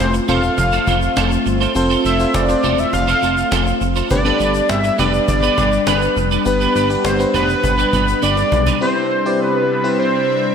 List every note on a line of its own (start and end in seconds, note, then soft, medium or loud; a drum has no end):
0.00 0.20 F1 loud
0.00 4.07 A3 medium
0.00 0.28 C4 medium
0.00 4.06 C4 medium
0.00 0.29 F4 medium
0.00 4.07 F4 medium
0.00 0.29 A4 medium
0.00 0.12 C5 loud
0.00 0.29 C5 medium
0.14 muted clean electric guitar stroke medium
0.14 shaker medium
0.28 0.50 E1 medium
0.28 1.03 C4 medium
0.28 0.43 C4 medium
0.28 1.03 F4 medium
0.28 0.43 F4 medium
0.28 0.42 A4 medium
0.28 1.04 A4 medium
0.28 1.04 C5 medium
0.28 0.42 C5 medium
0.28 1.42 F5 loud
0.28 cajon bass medium
0.28 shaker soft
0.43 muted clean electric guitar stroke soft
0.43 shaker soft
0.58 0.79 F1 loud
0.58 muted clean electric guitar stroke soft
0.58 cajon bass medium
0.58 shaker medium
0.72 0.86 C4 medium
0.72 0.86 F4 medium
0.72 0.87 A4 medium
0.72 0.87 C5 medium
0.72 shaker soft
0.87 1.09 F1 medium
0.87 0.98 C4 medium
0.87 0.99 F4 medium
0.87 0.99 A4 medium
0.87 0.99 C5 medium
0.87 cajon bass medium
0.87 shaker medium
1.02 muted clean electric guitar stroke soft
1.02 shaker medium
1.16 1.38 F1 loud
1.16 1.31 C4 medium
1.16 1.31 F4 medium
1.16 1.31 A4 medium
1.16 1.30 C5 medium
1.16 cajon slap loud
1.16 shaker medium
1.32 muted clean electric guitar stroke soft
1.32 shaker soft
1.46 1.67 G1 medium
1.46 muted clean electric guitar stroke soft
1.46 shaker soft
1.61 1.72 C4 medium
1.61 1.72 F4 medium
1.61 1.72 A4 medium
1.61 1.72 C5 medium
1.61 shaker soft
1.75 1.97 F1 loud
1.75 2.03 C4 medium
1.75 2.03 F4 medium
1.75 2.04 A4 medium
1.75 2.04 C5 loud
1.75 muted clean electric guitar stroke soft
1.75 shaker medium
1.90 2.04 C4 medium
1.90 2.04 F4 medium
1.90 2.05 A4 medium
1.90 2.04 C5 medium
1.90 shaker soft
2.05 2.26 F1 loud
2.05 2.16 C4 medium
2.05 2.16 F4 medium
2.05 2.16 A4 medium
2.05 2.17 C5 medium
2.05 2.36 E5 medium
2.05 cajon slap soft
2.05 shaker medium
2.19 2.38 C4 medium
2.19 2.38 F4 medium
2.19 2.39 A4 medium
2.19 2.39 C5 medium
2.19 muted clean electric guitar stroke soft
2.19 shaker soft
2.34 2.56 F1 loud
2.34 2.81 D5 loud
2.34 muted clean electric guitar stroke soft
2.34 cajon slap loud
2.34 shaker medium
2.49 3.24 C4 medium
2.49 3.24 F4 medium
2.49 3.24 A4 medium
2.49 3.25 C5 medium
2.49 muted clean electric guitar stroke medium
2.49 shaker medium
2.63 2.85 E1 loud
2.63 2.78 C4 medium
2.63 2.78 F4 medium
2.63 2.77 A4 medium
2.63 2.77 C5 medium
2.63 cajon bass medium
2.63 shaker soft
2.78 2.93 E5 loud
2.78 muted clean electric guitar stroke soft
2.78 shaker soft
2.93 3.14 F1 loud
2.93 3.77 F5 loud
2.93 muted clean electric guitar stroke soft
2.93 cajon bass medium
2.93 shaker medium
3.08 3.21 C4 medium
3.08 3.21 F4 medium
3.08 3.22 A4 medium
3.08 3.22 C5 medium
3.08 shaker medium
3.22 3.44 F1 medium
3.22 3.34 C4 medium
3.22 3.34 F4 medium
3.22 3.34 A4 medium
3.22 3.34 C5 medium
3.22 shaker soft
3.37 muted clean electric guitar stroke soft
3.37 shaker medium
3.51 3.73 F1 loud
3.51 3.66 C4 medium
3.51 3.66 F4 medium
3.51 3.65 A4 medium
3.51 3.65 C5 medium
3.51 cajon slap loud
3.51 shaker medium
3.66 muted clean electric guitar stroke soft
3.66 shaker soft
3.81 4.02 F1 medium
3.81 muted clean electric guitar stroke soft
3.81 shaker soft
3.96 4.08 C4 medium
3.96 4.07 F4 medium
3.96 4.07 A4 medium
3.96 4.07 C5 medium
3.96 shaker soft
4.10 4.32 G1 loud
4.10 8.77 G3 medium
4.10 4.20 B3 medium
4.10 8.77 B3 medium
4.10 8.77 D4 medium
4.10 4.20 D4 medium
4.10 4.20 G4 medium
4.10 4.20 B4 medium
4.10 4.71 D5 loud
4.10 muted clean electric guitar stroke soft
4.10 cajon bass loud
4.10 shaker medium
4.25 4.72 B3 medium
4.25 4.38 B3 medium
4.25 4.72 D4 medium
4.25 4.39 D4 medium
4.25 4.39 G4 medium
4.25 4.72 G4 medium
4.25 4.73 A4 medium
4.25 4.39 B4 medium
4.25 shaker soft
4.40 4.61 G1 loud
4.40 4.51 B3 medium
4.40 4.51 D4 medium
4.40 4.52 G4 medium
4.40 4.52 B4 medium
4.40 cajon slap soft
4.40 shaker medium
4.54 muted clean electric guitar stroke soft
4.54 shaker soft
4.69 4.91 G1 loud
4.69 5.01 E5 loud
4.69 muted clean electric guitar stroke soft
4.69 cajon slap loud
4.69 shaker medium
4.84 muted clean electric guitar stroke medium
4.84 shaker medium
4.98 5.20 F1 medium
4.98 5.74 B3 medium
4.98 5.13 B3 medium
4.98 5.74 D4 medium
4.98 5.13 D4 medium
4.98 5.74 G4 medium
4.98 5.13 G4 medium
4.98 5.74 B4 medium
4.98 5.12 B4 medium
4.98 5.28 D5 loud
4.98 cajon bass loud
4.98 shaker soft
5.13 muted clean electric guitar stroke soft
5.13 shaker soft
5.28 5.50 G1 loud
5.28 5.83 D5 loud
5.28 muted clean electric guitar stroke soft
5.28 cajon bass medium
5.28 shaker medium
5.43 5.56 B3 medium
5.43 5.57 D4 medium
5.43 5.57 G4 medium
5.43 5.57 B4 medium
5.43 shaker soft
5.57 5.79 G1 loud
5.57 5.69 B3 medium
5.57 5.69 D4 medium
5.57 5.69 G4 medium
5.57 5.69 B4 medium
5.57 cajon bass loud
5.57 shaker medium
5.72 muted clean electric guitar stroke soft
5.72 shaker medium
5.87 6.08 G1 loud
5.87 6.01 B3 medium
5.87 6.01 D4 medium
5.87 6.01 G4 medium
5.87 6.28 B4 medium
5.87 6.01 B4 medium
5.87 cajon slap loud
5.87 shaker medium
6.02 muted clean electric guitar stroke medium
6.02 shaker soft
6.17 6.38 F1 loud
6.17 muted clean electric guitar stroke soft
6.17 shaker soft
6.31 6.43 B3 medium
6.31 6.43 D4 medium
6.31 6.43 G4 medium
6.31 6.42 B4 medium
6.31 shaker soft
6.45 6.67 G1 loud
6.45 6.74 B3 medium
6.45 6.74 D4 medium
6.45 6.74 G4 medium
6.45 6.74 B4 medium
6.45 muted clean electric guitar stroke soft
6.45 cajon slap soft
6.45 shaker medium
6.60 6.74 B3 medium
6.60 6.74 D4 medium
6.60 6.75 G4 medium
6.60 6.75 B4 medium
6.60 shaker soft
6.75 6.97 G1 loud
6.75 6.86 B3 medium
6.75 6.87 D4 medium
6.75 6.87 G4 medium
6.75 6.89 B4 medium
6.75 6.87 B4 medium
6.75 cajon slap soft
6.75 shaker medium
6.89 7.08 B3 medium
6.89 7.09 D4 medium
6.89 7.09 G4 medium
6.89 7.09 B4 medium
6.89 muted clean electric guitar stroke medium
6.89 shaker soft
7.05 7.26 G1 loud
7.05 7.33 C5 medium
7.05 muted clean electric guitar stroke soft
7.05 cajon slap loud
7.05 shaker medium
7.19 7.94 B3 medium
7.19 7.94 D4 medium
7.19 7.95 G4 medium
7.19 7.95 B4 medium
7.19 muted clean electric guitar stroke soft
7.19 shaker medium
7.34 7.55 F1 medium
7.34 7.48 B3 medium
7.34 7.48 D4 medium
7.34 7.48 G4 medium
7.34 7.47 B4 medium
7.34 8.19 B4 medium
7.34 cajon bass loud
7.34 shaker soft
7.49 muted clean electric guitar stroke soft
7.49 shaker soft
7.63 7.85 G1 loud
7.63 muted clean electric guitar stroke soft
7.63 cajon bass medium
7.63 shaker medium
7.78 7.92 B3 medium
7.78 7.92 D4 medium
7.78 7.92 G4 medium
7.78 7.92 B4 medium
7.78 shaker medium
7.93 8.14 G1 loud
7.93 8.04 B3 medium
7.93 8.04 D4 medium
7.93 8.04 G4 medium
7.93 8.05 B4 medium
7.93 cajon bass medium
7.93 shaker medium
8.07 muted clean electric guitar stroke soft
8.07 shaker medium
8.22 8.44 G1 loud
8.22 8.36 B3 medium
8.22 8.37 D4 medium
8.22 8.36 G4 medium
8.22 8.36 B4 medium
8.22 8.77 D5 loud
8.22 cajon slap medium
8.22 shaker medium
8.37 muted clean electric guitar stroke soft
8.37 cajon slap medium
8.37 shaker soft
8.52 8.73 B1 loud
8.52 muted clean electric guitar stroke soft
8.52 cajon bass loud
8.52 shaker soft
8.67 8.78 B3 medium
8.67 8.78 D4 medium
8.67 8.78 G4 medium
8.67 8.78 B4 medium
8.67 cajon bass medium
8.67 shaker soft
8.81 10.55 C3 medium
8.81 10.55 G3 medium
8.81 9.09 C4 medium
8.81 10.55 C4 medium
8.81 10.55 D4 medium
8.81 9.09 E4 medium
8.81 9.10 G4 medium
8.81 9.10 B4 medium
8.81 9.42 C5 loud
8.81 9.10 C5 medium
8.81 10.55 E5 medium
9.25 9.63 C4 medium
9.25 9.63 E4 medium
9.25 9.63 G4 medium
9.25 9.63 B4 medium
9.25 9.63 D5 medium
9.40 9.99 B4 loud
9.84 10.55 C4 medium
9.84 10.55 E4 medium
9.84 10.55 G4 medium
9.84 10.55 C5 medium
9.84 10.55 B5 medium
9.99 10.55 C5 medium